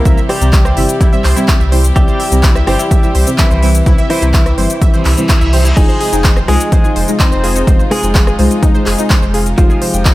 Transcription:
Already playing: C3 E3 G3 A#3 E4 G4 A#4
0.05 C2 C3 G3 C4 E4 C5 E5, kick, closed hi-hat, shaker
0.17 E5, shaker
0.29 G3 G4 C5, cross-stick, open hi-hat
0.41 C2 C3 G3 C4 E4 C5 A#5, closed hi-hat, shaker
0.53 E5, kick, clap, closed hi-hat, shaker
0.65 C5, cross-stick, shaker
0.77 G1 C3 G3 C4 E4 C5 E5, open hi-hat
0.89 closed hi-hat, shaker
1.01 E4, kick, closed hi-hat, shaker
1.13 C3 G3 C4 E4 C5 E5, shaker
1.24 C2 C5, clap, open hi-hat
1.36 C3 G3 C4 E4 C5 E5, closed hi-hat, shaker
1.48 E5, kick, clap, closed hi-hat, shaker
1.60 C2 E5, shaker
1.72 C3 G3 C4 E4 C5 G5, open hi-hat
1.84 closed hi-hat, shaker
1.96 C2 C3 G3 C4 E4 G4 C5 E5, kick, closed hi-hat, shaker
2.08 C5, shaker
2.20 E5, open hi-hat
2.32 C2 C3 G3 C4 E4 C5 A#5, closed hi-hat, shaker
2.43 E4, kick, clap, closed hi-hat, shaker
2.55 E5, cross-stick, shaker
2.67 G1 C3 G3 C4 E4 G4 C5 E5, cross-stick, open hi-hat
2.79 E4, closed hi-hat, shaker
2.91 E5, kick, closed hi-hat, shaker
3.03 C3 G3 C4 E4 C5 E5, shaker
3.15 C2 C5, open hi-hat
3.27 C3 G3 C4 E4 C5 E5, closed hi-hat, shaker
3.38 E3 E4 E5, kick, clap, closed hi-hat, shaker
3.51 C2 C5, shaker
3.62 C3 G3 C4 E4 C5 E5 G5, open hi-hat
3.75 closed hi-hat, shaker
3.86 C2 C3 G3 C4 E4 C5 E5, kick, closed hi-hat, shaker
3.98 E5, closed hi-hat, shaker
4.10 E3 E4 C5, cross-stick, open hi-hat
4.22 C2 C3 G3 C4 E4 C5 A#5, closed hi-hat, shaker
4.34 E5, kick, clap, closed hi-hat, shaker
4.46 E5, cross-stick, closed hi-hat, shaker
4.58 G1 C3 G3 C4 E4 C5 E5, open hi-hat
4.70 closed hi-hat, shaker
4.82 E5, kick, closed hi-hat, reverse cymbal, shaker
4.93 C3 G3 C4 E4 C5 E5, closed hi-hat, shaker
5.05 C2 E5, clap, open hi-hat
5.17 C3 G3 C4 E4 C5 E5, closed hi-hat, shaker
5.29 E4, kick, clap, closed hi-hat, shaker
5.41 C2 E5, closed hi-hat, shaker
5.53 G3 C4 E4 C5 G5, open hi-hat
5.65 E4, closed hi-hat, shaker
5.77 F1 C3 F3 G#3 D#4 F4 G#4 C5 D#5, kick, closed hi-hat, crash, shaker
5.89 C5, shaker
6.01 G#4, open hi-hat
6.13 F1 G#3 D#4 F4 C5 G5, closed hi-hat, shaker
6.24 C5, kick, clap, closed hi-hat, shaker
6.36 C5, cross-stick, shaker
6.48 C2 G#3 D#4 F4 G#4 C5 D#5, cross-stick, open hi-hat
6.60 closed hi-hat, shaker
6.72 C5, kick, closed hi-hat, shaker
6.84 G#3 D#4 F4 G#4 C5 D#5, shaker
6.96 F1 C5, open hi-hat
7.08 G#3 D#4 F4 C5 D#5, closed hi-hat, shaker
7.20 C4 D#4 C5, kick, clap, closed hi-hat, shaker
7.32 F1 C5, shaker
7.43 G#3 D#4 F4 G#4 C5 F5, open hi-hat
7.56 D#4, closed hi-hat, shaker
7.67 F1 G#3 D#4 F4 C5 D#5, kick, closed hi-hat, shaker
7.79 C5, shaker
7.91 G#3 G#4, cross-stick, open hi-hat
8.03 F1 G#3 D#4 F4 C5 G5, closed hi-hat, shaker
8.15 C5, kick, clap, closed hi-hat, shaker
8.27 G#4, cross-stick, shaker
8.39 C2 G#3 D#4 F4 C5 D#5, open hi-hat
8.51 closed hi-hat, shaker
8.62 D#4, kick, closed hi-hat, shaker
8.74 G#3 D#4 F4 C5 D#5, shaker
8.86 F1 G#4, clap, open hi-hat
8.98 G#3 D#4 F4 C5 D#5, closed hi-hat, shaker
9.10 C5, kick, clap, closed hi-hat, shaker
9.22 F1 C5, shaker
9.34 G#3 D#4 F4 G#4 C5 F5, open hi-hat
9.46 closed hi-hat, shaker
9.58 F1 F3 G#3 D#4 F4 G4 C5 D#5, kick, closed hi-hat, shaker
9.70 G#4, shaker
9.82 C5, open hi-hat
9.94 F1 G#3 D#4 F4 C5 G5, closed hi-hat, shaker
10.05 D#4, kick, clap, closed hi-hat, shaker

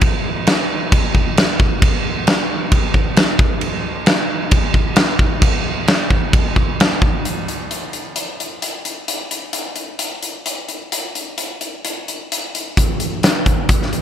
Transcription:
0.01 kick, crash
0.47 snare, crash
0.92 kick, crash
1.15 kick
1.37 snare, crash
1.60 kick
1.82 kick, crash
2.27 snare, crash
2.72 kick, crash
2.94 kick
3.16 snare, crash
3.39 kick
3.61 crash
4.06 snare, crash
4.51 kick, crash
4.74 kick
4.96 snare, crash
5.19 kick
5.42 kick, crash
5.88 snare, crash
6.10 kick
6.33 kick, crash
6.56 kick
6.80 snare, crash
7.02 kick
7.25 closed hi-hat
7.48 closed hi-hat
7.71 closed hi-hat
7.93 closed hi-hat
8.16 closed hi-hat
8.40 closed hi-hat
8.62 closed hi-hat
8.85 closed hi-hat
9.08 closed hi-hat
9.31 closed hi-hat
9.53 closed hi-hat
9.76 closed hi-hat
9.99 closed hi-hat
10.23 closed hi-hat
10.46 closed hi-hat
10.68 closed hi-hat
10.92 closed hi-hat
11.15 closed hi-hat
11.38 closed hi-hat
11.61 closed hi-hat
11.85 closed hi-hat
12.08 closed hi-hat
12.32 closed hi-hat
12.55 closed hi-hat
12.77 kick, closed hi-hat
13.00 closed hi-hat
13.23 snare, closed hi-hat
13.46 kick, closed hi-hat
13.69 kick, closed hi-hat
13.82 snare
13.93 closed hi-hat

